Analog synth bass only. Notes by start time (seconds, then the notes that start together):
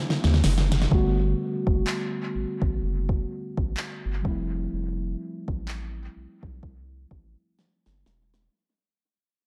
0.24 D#2
0.45 F#1
0.92 G1
1.67 F#1
2.35 A1
2.62 A1
2.82 F#1
3.58 A1
4.05 G1
4.25 F1
4.73 F1
5.48 A1
6.16 B1
6.43 B1
6.63 C2
7.11 A1
7.86 G1
8.06 E1